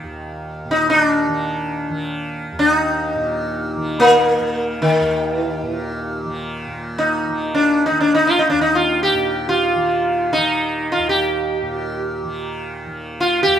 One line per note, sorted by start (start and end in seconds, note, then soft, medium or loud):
0.00 2.52 D#2 medium
0.00 0.65 A#2 medium
0.00 1.28 D#3 medium
0.65 3.15 A#2 medium
0.71 0.89 D#4 medium
0.90 1.01 D#4 medium
1.01 2.55 D4 medium
1.28 1.90 D#3 medium
1.90 3.76 D#3 medium
2.52 5.00 D#2 medium
2.59 2.71 D4 medium
2.71 4.04 D#4 medium
3.15 5.62 A#2 medium
3.76 4.39 D#3 medium
4.00 4.81 A#3 medium
4.39 6.25 D#3 medium
4.82 5.36 D#3 medium
5.01 8.52 D#2 medium
5.36 5.50 E3 medium
5.50 5.66 D#3 medium
5.63 6.66 A#2 medium
5.63 5.80 E3 medium
5.80 6.32 D#3 medium
6.25 7.28 D#3 medium
6.66 9.14 A#2 soft
6.98 7.54 D#4 medium
7.28 7.90 D#3 medium
7.55 7.86 D4 medium
7.86 9.75 D#3 soft
7.86 8.00 D#4 medium
8.00 8.14 D4 medium
8.15 8.27 D#4 medium
8.27 8.39 F4 medium
8.39 8.49 D#4 medium
8.50 10.98 D#2 medium
8.50 8.61 D4 medium
8.61 8.76 D#4 medium
8.75 9.02 F4 medium
9.03 9.48 G4 medium
9.14 11.62 A#2 medium
9.49 10.32 F4 medium
9.75 10.37 D#3 medium
10.33 10.88 D#4 medium
10.37 12.24 D#3 medium
10.92 11.09 F4 medium
10.98 13.46 D#2 medium
11.09 12.76 G4 medium
11.62 13.59 A#2 medium
12.24 12.86 D#3 medium
12.86 13.59 D#3 medium
13.20 13.42 F4 medium
13.43 13.59 D#2 medium
13.43 13.59 G4 medium